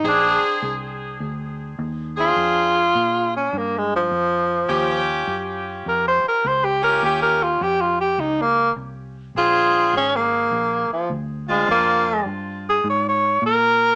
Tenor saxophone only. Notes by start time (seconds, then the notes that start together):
0.08 D4
2.20 F4
3.36 C#4
3.57 A#3
3.78 G#3
3.96 F3
5.88 A#4
6.08 C5
6.28 A#4
6.47 C5
6.64 G4
6.84 A#4
7.05 G4
7.22 A#4
7.43 F4
7.63 G4
7.81 F4
8.00 G4
8.20 D#4
8.41 A#3
9.38 F4
9.97 C#4
10.16 A#3
10.93 F3
11.50 G#3
11.71 A#3
12.69 G#4
12.90 C#5
13.09 C#5
13.46 A#4